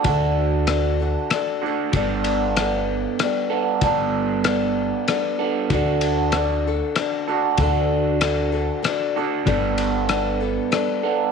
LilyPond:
<<
  \new Staff \with { instrumentName = "Clean electric guitar" } { \time 3/4 \key d \major \tempo 4 = 96 <d d' fis' a'>2~ <d d' fis' a'>8 <d d' fis' a'>8 | <g b d' a'>2~ <g b d' a'>8 <g b d' a'>8 | <g b d' a'>2~ <g b d' a'>8 <g b d' a'>8 | <d d' fis' a'>2~ <d d' fis' a'>8 <d d' fis' a'>8 |
<d d' fis' a'>2~ <d d' fis' a'>8 <d d' fis' a'>8 | <g b d' a'>2~ <g b d' a'>8 <g b d' a'>8 | }
  \new Staff \with { instrumentName = "Steel-string acoustic guitar" } { \time 3/4 \key d \major <d d' fis' a'>4 <d d' fis' a'>8 <d' fis' a'>8 <d d' fis' a'>8 <d' fis' a'>8 | <g b d' a'>4 <g b d' a'>4 <g b d' a'>4 | <g b d' a'>4 <g b d' a'>4 <g b d' a'>4 | <d d' fis' a'>4 <d d' fis' a'>8 <d' fis' a'>8 <d d' fis' a'>8 <d' fis' a'>8 |
<d d' fis' a'>4 <d d' fis' a'>8 <d' fis' a'>8 <d d' fis' a'>8 <d' fis' a'>8 | <g b d' a'>4 <g b d' a'>8 <b d' a'>8 <g b d' a'>4 | }
  \new Staff \with { instrumentName = "Upright bass" } { \clef bass \time 3/4 \key d \major d,2 r4 | g,,2 r4 | g,,2 r4 | d,2 r4 |
d,2 r4 | g,,2 r4 | }
  \new DrumStaff \with { instrumentName = "Drums" } \drummode { \time 3/4 <bd cymr>4 <cymr ss>4 <cymr ss>4 | <bd cymr>8 cymr8 <cymr ss>4 <cymr ss>4 | <bd cymr>4 <cymr ss>4 <cymr ss>4 | <bd cymr>8 cymr8 <cymr ss>4 <cymr ss>4 |
<bd cymr>4 <cymr ss>4 <cymr ss>4 | <bd cymr>8 cymr8 <cymr ss>4 <cymr ss>4 | }
>>